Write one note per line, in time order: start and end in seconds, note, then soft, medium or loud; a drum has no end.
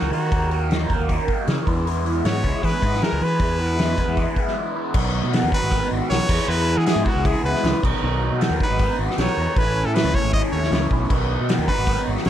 0.00 0.11 C#2 medium
0.00 0.11 F#3 medium
0.00 0.11 A#3 medium
0.00 0.11 D#4 medium
0.00 0.13 F#4 medium
0.11 0.29 D#3 medium
0.11 0.30 F#3 medium
0.11 0.31 A#3 medium
0.11 0.31 D#4 medium
0.11 0.67 F#4 medium
0.11 open hi-hat soft
0.31 0.86 D#2 medium
0.31 0.48 D#3 medium
0.31 0.49 F#3 medium
0.31 0.49 A#3 medium
0.31 0.50 D#4 loud
0.31 kick loud
0.31 open hi-hat medium
0.49 0.69 D#3 medium
0.49 0.69 F#3 medium
0.49 0.70 A#3 medium
0.49 0.70 D#4 medium
0.49 open hi-hat soft
0.70 0.88 D#3 medium
0.70 0.88 F#3 medium
0.70 0.89 A#3 medium
0.70 0.90 D#4 loud
0.70 snare loud
0.70 open hi-hat medium
0.89 0.98 D#2 medium
0.89 1.07 D#3 medium
0.89 1.07 F#3 medium
0.89 1.08 A#3 medium
0.89 1.09 D#4 medium
0.89 kick medium
0.89 open hi-hat soft
0.99 1.17 D#2 medium
1.08 1.26 D#3 medium
1.08 1.27 F#3 medium
1.08 1.28 A#3 loud
1.08 1.28 D#4 loud
1.08 kick medium
1.08 open hi-hat medium
1.27 1.47 D#3 medium
1.27 1.47 F#3 medium
1.27 1.48 A#3 medium
1.27 1.49 D#4 medium
1.27 kick medium
1.27 open hi-hat soft
1.47 1.56 C#3 medium
1.47 1.66 D#3 medium
1.47 1.66 F#3 medium
1.47 1.67 A#3 loud
1.47 1.67 D#4 medium
1.47 snare medium
1.47 open hi-hat medium
1.67 2.21 E2 medium
1.67 1.85 E3 medium
1.67 1.86 G#3 medium
1.67 1.87 B3 medium
1.67 1.87 E4 medium
1.67 kick loud
1.67 open hi-hat medium
1.86 2.04 E3 medium
1.86 2.05 G#3 medium
1.86 2.06 B3 medium
1.86 2.06 E4 medium
1.86 open hi-hat medium
2.05 2.24 E3 medium
2.05 2.24 G#3 medium
2.05 2.25 B3 medium
2.05 2.25 E4 medium
2.05 open hi-hat soft
2.24 2.42 G#2 medium
2.24 2.43 E3 medium
2.24 2.43 G#3 medium
2.24 2.44 B3 medium
2.24 2.44 E4 medium
2.24 2.66 C#5 loud
2.24 snare loud
2.24 open hi-hat medium
2.43 2.53 C#2 medium
2.43 2.60 E3 medium
2.43 2.62 G#3 medium
2.43 2.62 B3 medium
2.43 2.62 E4 medium
2.43 kick medium
2.43 open hi-hat soft
2.62 2.80 E3 medium
2.62 2.72 E3 medium
2.62 2.82 G#3 loud
2.62 2.82 B3 loud
2.62 2.82 E4 loud
2.62 3.04 B4 medium
2.62 kick medium
2.62 open hi-hat medium
2.81 3.00 G#2 medium
2.81 2.99 E3 medium
2.81 3.01 G#3 medium
2.81 3.02 B3 medium
2.81 3.01 E4 medium
2.81 kick medium
2.81 open hi-hat medium
2.94 snare soft
3.01 3.19 E3 medium
3.01 3.20 G#3 medium
3.01 3.21 B3 medium
3.01 3.20 E4 medium
3.01 3.25 A#4 medium
3.01 snare loud
3.01 open hi-hat medium
3.12 3.21 C#2 medium
3.20 3.38 E3 medium
3.20 3.39 E3 medium
3.20 3.39 G#3 medium
3.20 3.39 B3 medium
3.20 3.40 E4 medium
3.20 4.57 B4 medium
3.20 open hi-hat medium
3.39 3.94 E2 medium
3.39 3.57 E3 medium
3.39 3.58 G#3 medium
3.39 3.58 B3 medium
3.39 3.59 E4 medium
3.39 kick loud
3.39 open hi-hat medium
3.58 3.77 E3 medium
3.58 3.78 G#3 medium
3.58 3.78 B3 medium
3.58 3.79 E4 medium
3.58 open hi-hat soft
3.78 3.97 E3 medium
3.78 3.97 G#3 loud
3.78 3.98 B3 medium
3.78 3.98 E4 medium
3.78 snare loud
3.78 open hi-hat medium
3.98 4.07 E2 medium
3.98 4.16 E3 medium
3.98 4.17 G#3 medium
3.98 4.18 B3 medium
3.98 4.18 E4 medium
3.98 kick medium
3.98 open hi-hat soft
4.08 4.25 E2 medium
4.17 4.35 E3 medium
4.17 4.36 G#3 medium
4.17 4.36 B3 medium
4.17 4.37 E4 loud
4.17 kick medium
4.17 open hi-hat medium
4.36 4.54 E3 medium
4.36 4.54 G#3 medium
4.36 4.55 B3 medium
4.36 4.56 E4 medium
4.36 kick medium
4.36 open hi-hat soft
4.48 snare soft
4.55 4.73 E3 medium
4.55 4.74 G#3 medium
4.55 4.75 B3 medium
4.55 4.75 E4 medium
4.74 4.93 E3 medium
4.74 4.94 G#3 medium
4.74 4.94 B3 medium
4.74 4.94 E4 medium
4.94 5.21 B1 loud
4.94 5.31 B2 medium
4.94 5.32 D#3 loud
4.94 5.32 F#3 medium
4.94 5.33 B3 loud
4.94 5.33 F#4 medium
4.94 kick loud
4.94 crash loud
5.23 5.41 B2 medium
5.32 5.51 B2 medium
5.32 5.51 D#3 medium
5.32 5.52 F#3 medium
5.32 5.54 B3 medium
5.32 5.53 F#4 medium
5.32 snare loud
5.32 open hi-hat medium
5.43 5.52 D#2 loud
5.52 5.70 B2 medium
5.52 5.70 D#3 medium
5.52 5.71 F#3 medium
5.52 5.72 B3 medium
5.52 5.72 F#4 loud
5.52 5.89 B4 loud
5.52 kick medium
5.62 5.80 G#1 medium
5.71 6.09 B2 medium
5.71 6.09 D#3 loud
5.71 6.09 F#3 loud
5.71 6.11 B3 loud
5.71 6.11 F#4 loud
5.71 kick loud
5.71 open hi-hat medium
5.91 6.00 G#1 medium
6.10 6.19 B1 medium
6.10 6.28 B2 medium
6.10 6.29 D#3 medium
6.10 6.29 F#3 medium
6.10 6.30 B3 medium
6.10 6.29 F#4 medium
6.10 6.50 C#5 loud
6.10 snare loud
6.10 open hi-hat medium
6.29 6.38 E2 medium
6.29 6.47 E3 medium
6.29 6.48 G#3 medium
6.29 6.49 B3 loud
6.29 6.48 E4 medium
6.29 kick loud
6.29 crash loud
6.48 6.75 E2 medium
6.48 6.85 E3 medium
6.48 6.86 G#3 loud
6.48 6.87 B3 loud
6.48 6.86 E4 loud
6.48 6.79 B4 loud
6.77 6.95 E3 medium
6.77 6.85 G#4 medium
6.86 7.04 E3 medium
6.86 7.06 G#3 medium
6.86 7.06 B3 medium
6.86 7.06 E4 medium
6.86 7.06 G#4 medium
6.86 snare loud
6.86 open hi-hat medium
6.96 7.05 G#2 loud
7.05 7.23 E3 medium
7.05 7.24 G#3 medium
7.05 7.24 B3 medium
7.05 7.25 E4 loud
7.05 7.28 F#4 medium
7.05 kick medium
7.15 7.33 C#2 medium
7.24 7.62 E3 medium
7.24 7.63 G#3 loud
7.24 7.63 B3 loud
7.24 7.64 E4 loud
7.24 7.44 G#4 medium
7.24 kick loud
7.24 open hi-hat medium
7.44 7.53 C#2 medium
7.44 7.81 B4 medium
7.55 snare soft
7.63 7.72 C#2 medium
7.63 7.82 E3 medium
7.63 7.83 G#3 medium
7.63 7.82 B3 loud
7.63 7.83 E4 loud
7.63 snare loud
7.63 open hi-hat medium
7.82 7.92 B1 medium
7.82 8.02 B2 medium
7.82 8.02 D#3 loud
7.82 8.03 F#3 medium
7.82 8.03 B3 medium
7.82 8.04 D#4 loud
7.82 kick loud
7.82 crash loud
8.03 8.29 B1 medium
8.03 8.39 B2 loud
8.03 8.40 D#3 medium
8.03 8.40 F#3 loud
8.03 8.41 B3 loud
8.03 8.41 D#4 loud
8.31 8.49 B2 medium
8.40 8.59 B2 medium
8.40 8.59 D#3 medium
8.40 8.60 F#3 medium
8.40 8.60 B3 medium
8.40 8.61 D#4 medium
8.40 snare loud
8.40 open hi-hat medium
8.50 8.59 D#2 medium
8.60 8.78 B2 medium
8.60 8.79 D#3 medium
8.60 8.80 F#3 medium
8.60 8.80 B3 medium
8.60 8.81 D#4 medium
8.60 8.98 B4 medium
8.60 kick medium
8.70 8.87 G#1 medium
8.79 9.17 B2 loud
8.79 9.18 D#3 loud
8.79 9.18 F#3 loud
8.79 9.19 B3 loud
8.79 9.20 D#4 loud
8.79 kick loud
8.79 open hi-hat medium
8.99 9.08 G#1 medium
9.10 snare soft
9.18 9.27 B1 medium
9.18 9.36 B2 medium
9.18 9.37 D#3 medium
9.18 9.38 F#3 medium
9.18 9.38 B3 medium
9.18 9.39 D#4 medium
9.18 9.59 C#5 loud
9.18 snare loud
9.18 open hi-hat medium
9.37 9.46 E2 medium
9.37 9.55 B2 medium
9.37 9.56 D#3 medium
9.37 9.56 F#3 medium
9.37 9.57 B3 medium
9.37 9.57 D#4 loud
9.56 9.83 A1 loud
9.56 9.93 A2 medium
9.56 9.94 E3 medium
9.56 9.94 A3 medium
9.56 9.95 C#4 loud
9.56 9.96 E4 loud
9.56 9.87 B4 loud
9.56 kick loud
9.56 open hi-hat medium
9.85 10.03 A2 medium
9.85 9.96 A4 medium
9.94 10.13 A2 medium
9.94 10.13 E3 medium
9.94 10.14 A3 medium
9.94 10.14 C#4 medium
9.94 10.15 E4 medium
9.94 10.16 B4 loud
9.94 snare loud
9.94 open hi-hat medium
10.04 10.13 C#2 medium
10.14 10.32 A2 medium
10.14 10.33 E3 medium
10.14 10.33 A3 medium
10.14 10.35 C#4 medium
10.14 10.35 E4 medium
10.14 10.33 C#5 loud
10.14 kick medium
10.23 10.41 G#1 medium
10.33 10.70 A2 medium
10.33 10.71 E3 loud
10.33 10.71 A3 loud
10.33 10.72 C#4 loud
10.33 10.73 E4 loud
10.33 10.42 D#5 loud
10.33 kick loud
10.33 open hi-hat medium
10.52 10.70 D#2 medium
10.52 10.88 C#5 medium
10.63 snare soft
10.71 10.89 C#2 medium
10.71 10.90 A2 medium
10.71 10.91 E3 medium
10.71 10.91 A3 medium
10.71 10.92 C#4 medium
10.71 10.92 E4 medium
10.71 snare loud
10.71 open hi-hat medium
10.91 11.08 B1 medium
10.91 11.09 A2 medium
10.91 11.10 E3 medium
10.91 11.10 A3 medium
10.91 11.10 C#4 medium
10.91 11.11 E4 loud
10.91 kick medium
11.10 11.37 B1 medium
11.10 11.47 B2 medium
11.10 11.48 D#3 medium
11.10 11.48 F#3 medium
11.10 11.50 B3 loud
11.10 11.49 D#4 loud
11.10 kick loud
11.10 crash medium
11.41 11.57 B2 medium
11.48 11.66 B2 medium
11.48 11.67 D#3 medium
11.48 11.67 F#3 medium
11.48 11.68 B3 medium
11.48 11.69 D#4 medium
11.48 snare loud
11.48 open hi-hat medium
11.58 11.67 D#2 medium
11.67 11.86 B2 medium
11.67 11.87 D#3 medium
11.67 11.87 F#3 loud
11.67 11.89 B3 medium
11.67 11.88 D#4 medium
11.67 12.04 B4 loud
11.67 kick medium
11.78 11.95 G#1 medium
11.87 12.24 B2 loud
11.87 12.25 D#3 loud
11.87 12.25 F#3 loud
11.87 12.27 B3 loud
11.87 12.27 D#4 loud
11.87 kick loud
11.87 open hi-hat medium
12.07 12.16 G#1 medium
12.17 snare soft
12.25 12.30 B1 medium
12.25 12.30 B2 medium
12.25 12.30 D#3 medium
12.25 snare loud
12.25 open hi-hat medium